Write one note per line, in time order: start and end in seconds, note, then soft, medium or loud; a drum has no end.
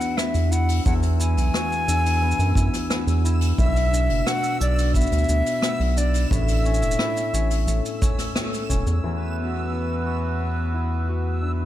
0.00 0.84 E2 medium
0.00 0.77 A3 medium
0.00 0.17 B3 medium
0.00 1.88 D4 medium
0.00 0.51 E4 medium
0.00 1.53 F#4 medium
0.00 0.19 F#5 loud
0.00 9.02 E6 medium
0.00 open hi-hat medium
0.00 shaker soft
0.17 2.22 B3 medium
0.17 0.53 E5 loud
0.17 cross-stick medium
0.17 shaker medium
0.34 0.80 E2 medium
0.34 open hi-hat medium
0.34 shaker soft
0.51 1.19 E4 medium
0.51 0.85 F#5 loud
0.51 shaker medium
0.69 open hi-hat medium
0.69 shaker soft
0.71 open hi-hat medium
0.74 open hi-hat soft
0.77 open hi-hat soft
0.80 open hi-hat soft
0.83 3.63 E2 medium
0.83 1.38 E2 loud
0.83 0.94 F#5 medium
0.83 kick loud
0.83 open hi-hat soft
0.83 shaker medium
1.03 open hi-hat medium
1.03 shaker soft
1.19 2.04 E4 medium
1.19 3.20 G#5 loud
1.19 shaker medium
1.37 1.50 B1 medium
1.37 open hi-hat medium
1.37 shaker soft
1.54 4.26 F#4 medium
1.54 cross-stick loud
1.54 shaker medium
1.72 shaker soft
1.88 2.34 E2 medium
1.88 3.92 D4 medium
1.88 open hi-hat soft
1.88 shaker medium
2.05 2.56 E4 soft
2.05 open hi-hat medium
2.05 shaker soft
2.22 2.90 B3 medium
2.31 shaker medium
2.39 2.53 F#2 medium
2.39 open hi-hat soft
2.39 shaker soft
2.55 2.69 F#2 medium
2.55 3.24 E4 medium
2.55 kick medium
2.55 shaker medium
2.73 cross-stick soft
2.73 open hi-hat medium
2.73 shaker soft
2.90 4.94 B3 medium
2.90 cross-stick loud
2.90 shaker medium
3.07 3.53 E2 medium
3.07 open hi-hat medium
3.07 shaker soft
3.24 5.86 E4 medium
3.24 shaker medium
3.41 open hi-hat medium
3.41 shaker soft
3.58 4.11 B1 loud
3.58 6.36 B2 medium
3.58 4.28 E5 loud
3.58 kick loud
3.58 shaker medium
3.76 open hi-hat medium
3.76 shaker soft
3.92 4.60 D4 medium
3.92 shaker medium
4.09 4.23 F#1 medium
4.09 open hi-hat medium
4.26 6.70 F#4 medium
4.26 4.61 F#5 loud
4.26 cross-stick medium
4.26 shaker medium
4.43 open hi-hat soft
4.43 shaker soft
4.60 5.06 B1 medium
4.60 5.28 D4 medium
4.60 4.93 D5 loud
4.60 shaker medium
4.78 open hi-hat medium
4.78 shaker soft
4.94 5.62 B3 medium
4.94 5.99 E5 loud
4.94 kick medium
4.94 shaker medium
5.01 shaker soft
5.07 shaker soft
5.12 5.25 D2 medium
5.12 open hi-hat soft
5.12 shaker soft
5.18 shaker soft
5.24 shaker soft
5.29 5.42 D2 medium
5.29 5.96 D4 medium
5.29 shaker medium
5.46 open hi-hat medium
5.46 shaker soft
5.62 8.73 B3 medium
5.62 cross-stick loud
5.62 shaker medium
5.80 6.26 B1 medium
5.80 open hi-hat medium
5.97 6.71 D4 medium
5.97 6.31 D5 medium
5.97 shaker medium
6.14 open hi-hat medium
6.14 shaker medium
6.31 6.84 A1 loud
6.31 9.09 A2 medium
6.31 8.32 E5 loud
6.31 kick loud
6.31 shaker medium
6.48 open hi-hat medium
6.48 shaker soft
6.65 7.33 C#4 medium
6.65 shaker soft
6.74 shaker medium
6.82 6.96 E1 medium
6.82 shaker medium
6.91 shaker medium
6.99 9.71 E4 medium
6.99 cross-stick loud
7.16 open hi-hat medium
7.16 shaker soft
7.33 7.67 A1 medium
7.33 8.01 C#4 medium
7.33 shaker medium
7.51 open hi-hat medium
7.51 shaker soft
7.67 7.81 A1 medium
7.67 8.35 A3 medium
7.67 shaker medium
7.85 open hi-hat soft
7.85 shaker soft
8.02 8.69 C#4 medium
8.02 kick loud
8.02 shaker medium
8.18 cross-stick soft
8.18 open hi-hat medium
8.18 shaker medium
8.36 11.65 A3 medium
8.36 cross-stick loud
8.36 shaker medium
8.53 open hi-hat medium
8.53 shaker soft
8.69 8.83 E1 medium
8.69 11.48 C#4 medium
8.69 kick medium
8.69 shaker medium
8.86 9.00 E2 loud
8.86 shaker soft
9.03 11.65 E2 medium
9.03 11.65 E3 medium
9.03 10.06 F#4 medium
9.03 11.65 E6 medium
9.17 11.65 B4 medium
9.29 11.65 B3 medium
9.38 10.40 B3 soft
9.44 11.65 F#4 medium
9.72 10.74 E4 soft
10.06 11.08 F#4 medium
10.40 11.65 B3 medium
10.74 11.59 E4 medium
11.08 11.65 F#4 medium
11.42 11.65 D4 medium
11.60 11.65 E4 soft